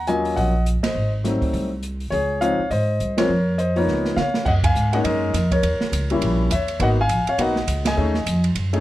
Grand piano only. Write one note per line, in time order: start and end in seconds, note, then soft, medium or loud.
0.07 0.51 F#3 medium
0.07 0.51 A#3 soft
0.07 0.52 C#4 soft
0.07 0.52 F4 medium
0.07 0.36 D#5 medium
0.07 0.38 G#5 medium
0.36 0.65 D#5 medium
0.36 0.64 F#5 medium
0.83 1.12 C5 soft
0.83 1.11 D#5 medium
1.24 1.68 F#3 soft
1.24 1.68 A3 soft
1.24 1.68 C4 soft
1.24 1.68 D#4 soft
2.10 2.40 G#4 medium
2.10 2.38 C#5 medium
2.41 2.57 F3 soft
2.41 2.57 G#3 soft
2.41 2.57 C4 soft
2.41 2.58 D#4 medium
2.41 2.69 C#5 medium
2.41 2.68 F5 medium
2.71 3.15 C5 medium
2.71 3.19 D#5 medium
3.17 3.28 F3 medium
3.17 3.28 G#3 medium
3.17 3.28 C4 medium
3.17 3.29 F4 medium
3.17 3.56 A#4 medium
3.17 3.56 C#5 medium
3.58 3.75 C5 medium
3.58 3.75 D#5 medium
3.76 4.14 F3 medium
3.76 4.15 A#3 soft
3.76 4.15 B3 soft
3.76 4.15 D#4 medium
3.76 4.15 A#4 soft
3.76 4.14 C#5 medium
4.17 4.45 C#5 medium
4.17 4.47 F5 medium
4.45 4.53 D#5 medium
4.45 4.50 F#5 medium
4.64 4.92 F5 medium
4.64 4.94 G#5 medium
4.93 5.32 G#3 medium
4.93 5.32 A#3 medium
4.93 5.32 C#4 medium
4.93 5.32 D#4 medium
4.93 5.00 D#5 medium
4.93 4.98 F#5 medium
5.04 5.49 A#4 medium
5.04 5.53 D#5 medium
5.52 6.07 A#4 medium
5.52 6.06 C#5 medium
6.11 6.49 G3 medium
6.11 6.49 A#3 medium
6.11 6.49 C#4 medium
6.11 6.49 E4 medium
6.52 6.80 C#5 medium
6.52 6.79 E5 medium
6.80 6.96 A#3 medium
6.80 6.96 B3 medium
6.80 6.96 D#4 medium
6.80 6.96 F#4 medium
6.80 6.88 F#5 medium
6.84 6.89 D#5 medium
7.01 7.27 F5 medium
7.01 7.27 G#5 loud
7.29 7.39 C#5 medium
7.29 7.40 F5 medium
7.38 7.54 A#3 medium
7.38 7.54 B3 soft
7.38 7.55 D#4 soft
7.38 7.55 F#4 medium
7.38 7.84 D#5 medium
7.38 7.83 F#5 medium
7.87 8.41 D#5 medium
7.87 8.41 G#5 medium
7.97 8.13 A3 medium
7.97 8.13 C#4 medium
7.97 8.13 D#4 soft
7.97 8.13 G#4 medium
8.73 8.80 A3 medium
8.73 8.80 C#4 medium
8.73 8.80 D#4 medium
8.73 8.80 G#4 medium